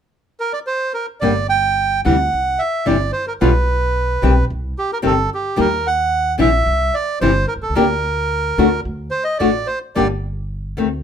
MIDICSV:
0, 0, Header, 1, 4, 480
1, 0, Start_track
1, 0, Key_signature, -2, "minor"
1, 0, Tempo, 543971
1, 1080, Time_signature, 4, 2, 24, 8
1, 6353, Tempo, 549451
1, 9701, End_track
2, 0, Start_track
2, 0, Title_t, "Bandoneon"
2, 0, Program_c, 0, 23
2, 351, Note_on_c, 0, 70, 63
2, 464, Note_off_c, 0, 70, 0
2, 468, Note_on_c, 0, 74, 57
2, 524, Note_off_c, 0, 74, 0
2, 588, Note_on_c, 0, 72, 65
2, 816, Note_off_c, 0, 72, 0
2, 826, Note_on_c, 0, 70, 54
2, 938, Note_off_c, 0, 70, 0
2, 1063, Note_on_c, 0, 74, 65
2, 1297, Note_off_c, 0, 74, 0
2, 1316, Note_on_c, 0, 79, 74
2, 1771, Note_off_c, 0, 79, 0
2, 1809, Note_on_c, 0, 78, 67
2, 2282, Note_on_c, 0, 76, 63
2, 2305, Note_off_c, 0, 78, 0
2, 2525, Note_on_c, 0, 74, 60
2, 2532, Note_off_c, 0, 76, 0
2, 2749, Note_off_c, 0, 74, 0
2, 2757, Note_on_c, 0, 72, 60
2, 2874, Note_off_c, 0, 72, 0
2, 2888, Note_on_c, 0, 70, 51
2, 2942, Note_off_c, 0, 70, 0
2, 3007, Note_on_c, 0, 71, 50
2, 3927, Note_off_c, 0, 71, 0
2, 4221, Note_on_c, 0, 67, 64
2, 4333, Note_off_c, 0, 67, 0
2, 4350, Note_on_c, 0, 70, 57
2, 4396, Note_off_c, 0, 70, 0
2, 4466, Note_on_c, 0, 69, 61
2, 4676, Note_off_c, 0, 69, 0
2, 4713, Note_on_c, 0, 67, 57
2, 4942, Note_off_c, 0, 67, 0
2, 4946, Note_on_c, 0, 70, 70
2, 5177, Note_on_c, 0, 78, 70
2, 5178, Note_off_c, 0, 70, 0
2, 5611, Note_off_c, 0, 78, 0
2, 5652, Note_on_c, 0, 76, 71
2, 6126, Note_on_c, 0, 74, 67
2, 6135, Note_off_c, 0, 76, 0
2, 6344, Note_off_c, 0, 74, 0
2, 6361, Note_on_c, 0, 72, 67
2, 6580, Note_off_c, 0, 72, 0
2, 6594, Note_on_c, 0, 70, 56
2, 6648, Note_off_c, 0, 70, 0
2, 6724, Note_on_c, 0, 69, 49
2, 6830, Note_off_c, 0, 69, 0
2, 6835, Note_on_c, 0, 70, 58
2, 7755, Note_off_c, 0, 70, 0
2, 8019, Note_on_c, 0, 72, 63
2, 8135, Note_off_c, 0, 72, 0
2, 8137, Note_on_c, 0, 75, 65
2, 8255, Note_off_c, 0, 75, 0
2, 8261, Note_on_c, 0, 74, 57
2, 8507, Note_on_c, 0, 72, 57
2, 8515, Note_off_c, 0, 74, 0
2, 8617, Note_off_c, 0, 72, 0
2, 8760, Note_on_c, 0, 74, 55
2, 8866, Note_off_c, 0, 74, 0
2, 9701, End_track
3, 0, Start_track
3, 0, Title_t, "Nylon-string guitar"
3, 0, Program_c, 1, 24
3, 1072, Note_on_c, 1, 50, 53
3, 1081, Note_on_c, 1, 55, 55
3, 1082, Note_on_c, 1, 58, 55
3, 1082, Note_on_c, 1, 62, 64
3, 1088, Note_on_c, 1, 67, 58
3, 1156, Note_off_c, 1, 50, 0
3, 1161, Note_off_c, 1, 55, 0
3, 1161, Note_off_c, 1, 58, 0
3, 1161, Note_off_c, 1, 62, 0
3, 1164, Note_off_c, 1, 67, 0
3, 1806, Note_on_c, 1, 48, 45
3, 1809, Note_on_c, 1, 55, 52
3, 1812, Note_on_c, 1, 62, 47
3, 1813, Note_on_c, 1, 52, 50
3, 1816, Note_on_c, 1, 64, 53
3, 1887, Note_off_c, 1, 48, 0
3, 1889, Note_off_c, 1, 55, 0
3, 1890, Note_off_c, 1, 52, 0
3, 1890, Note_off_c, 1, 62, 0
3, 1892, Note_off_c, 1, 64, 0
3, 2521, Note_on_c, 1, 48, 57
3, 2523, Note_on_c, 1, 52, 49
3, 2524, Note_on_c, 1, 55, 57
3, 2529, Note_on_c, 1, 62, 55
3, 2533, Note_on_c, 1, 64, 60
3, 2604, Note_off_c, 1, 48, 0
3, 2605, Note_off_c, 1, 52, 0
3, 2605, Note_off_c, 1, 55, 0
3, 2608, Note_off_c, 1, 62, 0
3, 2610, Note_off_c, 1, 64, 0
3, 3009, Note_on_c, 1, 47, 61
3, 3010, Note_on_c, 1, 50, 54
3, 3013, Note_on_c, 1, 55, 68
3, 3013, Note_on_c, 1, 59, 57
3, 3014, Note_on_c, 1, 65, 66
3, 3088, Note_off_c, 1, 47, 0
3, 3089, Note_off_c, 1, 50, 0
3, 3090, Note_off_c, 1, 55, 0
3, 3091, Note_off_c, 1, 59, 0
3, 3091, Note_off_c, 1, 65, 0
3, 3725, Note_on_c, 1, 48, 49
3, 3727, Note_on_c, 1, 51, 48
3, 3731, Note_on_c, 1, 55, 51
3, 3734, Note_on_c, 1, 60, 58
3, 3736, Note_on_c, 1, 67, 59
3, 3804, Note_off_c, 1, 48, 0
3, 3805, Note_off_c, 1, 51, 0
3, 3807, Note_off_c, 1, 55, 0
3, 3809, Note_off_c, 1, 60, 0
3, 3810, Note_off_c, 1, 67, 0
3, 4431, Note_on_c, 1, 48, 59
3, 4433, Note_on_c, 1, 55, 52
3, 4435, Note_on_c, 1, 51, 55
3, 4438, Note_on_c, 1, 60, 58
3, 4440, Note_on_c, 1, 67, 62
3, 4514, Note_off_c, 1, 48, 0
3, 4515, Note_off_c, 1, 55, 0
3, 4516, Note_off_c, 1, 51, 0
3, 4517, Note_off_c, 1, 60, 0
3, 4519, Note_off_c, 1, 67, 0
3, 4909, Note_on_c, 1, 51, 59
3, 4915, Note_on_c, 1, 55, 59
3, 4918, Note_on_c, 1, 58, 65
3, 4918, Note_on_c, 1, 63, 65
3, 4919, Note_on_c, 1, 67, 67
3, 4993, Note_off_c, 1, 51, 0
3, 4996, Note_off_c, 1, 55, 0
3, 4997, Note_off_c, 1, 58, 0
3, 4997, Note_off_c, 1, 63, 0
3, 4998, Note_off_c, 1, 67, 0
3, 5628, Note_on_c, 1, 48, 57
3, 5631, Note_on_c, 1, 55, 51
3, 5636, Note_on_c, 1, 52, 56
3, 5638, Note_on_c, 1, 62, 64
3, 5645, Note_on_c, 1, 64, 64
3, 5709, Note_off_c, 1, 48, 0
3, 5711, Note_off_c, 1, 55, 0
3, 5713, Note_off_c, 1, 52, 0
3, 5715, Note_off_c, 1, 62, 0
3, 5718, Note_off_c, 1, 64, 0
3, 6366, Note_on_c, 1, 48, 59
3, 6366, Note_on_c, 1, 52, 55
3, 6369, Note_on_c, 1, 55, 57
3, 6370, Note_on_c, 1, 62, 58
3, 6374, Note_on_c, 1, 64, 61
3, 6439, Note_off_c, 1, 48, 0
3, 6439, Note_off_c, 1, 52, 0
3, 6441, Note_off_c, 1, 55, 0
3, 6441, Note_off_c, 1, 62, 0
3, 6443, Note_off_c, 1, 64, 0
3, 6836, Note_on_c, 1, 50, 61
3, 6840, Note_on_c, 1, 58, 65
3, 6845, Note_on_c, 1, 67, 61
3, 6846, Note_on_c, 1, 62, 69
3, 6913, Note_off_c, 1, 50, 0
3, 6915, Note_off_c, 1, 58, 0
3, 6918, Note_off_c, 1, 62, 0
3, 6918, Note_off_c, 1, 67, 0
3, 7557, Note_on_c, 1, 50, 53
3, 7563, Note_on_c, 1, 57, 61
3, 7563, Note_on_c, 1, 62, 59
3, 7567, Note_on_c, 1, 66, 59
3, 7632, Note_off_c, 1, 50, 0
3, 7635, Note_off_c, 1, 57, 0
3, 7635, Note_off_c, 1, 62, 0
3, 7637, Note_off_c, 1, 66, 0
3, 8275, Note_on_c, 1, 50, 54
3, 8277, Note_on_c, 1, 57, 59
3, 8280, Note_on_c, 1, 62, 62
3, 8285, Note_on_c, 1, 66, 61
3, 8353, Note_off_c, 1, 50, 0
3, 8354, Note_off_c, 1, 57, 0
3, 8355, Note_off_c, 1, 62, 0
3, 8358, Note_off_c, 1, 66, 0
3, 8760, Note_on_c, 1, 50, 60
3, 8763, Note_on_c, 1, 55, 57
3, 8763, Note_on_c, 1, 58, 61
3, 8767, Note_on_c, 1, 62, 61
3, 8773, Note_on_c, 1, 67, 72
3, 8836, Note_off_c, 1, 50, 0
3, 8837, Note_off_c, 1, 55, 0
3, 8838, Note_off_c, 1, 58, 0
3, 8840, Note_off_c, 1, 62, 0
3, 8843, Note_off_c, 1, 67, 0
3, 9471, Note_on_c, 1, 51, 53
3, 9479, Note_on_c, 1, 57, 52
3, 9482, Note_on_c, 1, 60, 63
3, 9552, Note_off_c, 1, 51, 0
3, 9556, Note_off_c, 1, 57, 0
3, 9557, Note_off_c, 1, 60, 0
3, 9701, End_track
4, 0, Start_track
4, 0, Title_t, "Upright bass"
4, 0, Program_c, 2, 32
4, 1080, Note_on_c, 2, 31, 64
4, 1772, Note_off_c, 2, 31, 0
4, 1816, Note_on_c, 2, 38, 67
4, 2015, Note_off_c, 2, 38, 0
4, 2059, Note_on_c, 2, 36, 56
4, 2256, Note_off_c, 2, 36, 0
4, 2535, Note_on_c, 2, 31, 64
4, 2733, Note_off_c, 2, 31, 0
4, 3013, Note_on_c, 2, 35, 62
4, 3693, Note_off_c, 2, 35, 0
4, 3730, Note_on_c, 2, 35, 75
4, 3927, Note_off_c, 2, 35, 0
4, 3974, Note_on_c, 2, 36, 65
4, 4168, Note_off_c, 2, 36, 0
4, 4446, Note_on_c, 2, 31, 64
4, 4643, Note_off_c, 2, 31, 0
4, 4930, Note_on_c, 2, 39, 71
4, 5604, Note_off_c, 2, 39, 0
4, 5639, Note_on_c, 2, 34, 68
4, 5837, Note_off_c, 2, 34, 0
4, 5880, Note_on_c, 2, 36, 68
4, 6077, Note_off_c, 2, 36, 0
4, 6364, Note_on_c, 2, 31, 69
4, 6560, Note_off_c, 2, 31, 0
4, 6667, Note_on_c, 2, 35, 33
4, 6720, Note_off_c, 2, 35, 0
4, 6725, Note_on_c, 2, 36, 42
4, 6779, Note_off_c, 2, 36, 0
4, 6786, Note_on_c, 2, 37, 49
4, 6839, Note_off_c, 2, 37, 0
4, 6849, Note_on_c, 2, 38, 66
4, 7521, Note_off_c, 2, 38, 0
4, 7557, Note_on_c, 2, 38, 69
4, 7754, Note_off_c, 2, 38, 0
4, 7797, Note_on_c, 2, 38, 66
4, 7994, Note_off_c, 2, 38, 0
4, 8280, Note_on_c, 2, 33, 59
4, 8479, Note_off_c, 2, 33, 0
4, 8773, Note_on_c, 2, 31, 66
4, 9448, Note_off_c, 2, 31, 0
4, 9485, Note_on_c, 2, 38, 69
4, 9681, Note_off_c, 2, 38, 0
4, 9701, End_track
0, 0, End_of_file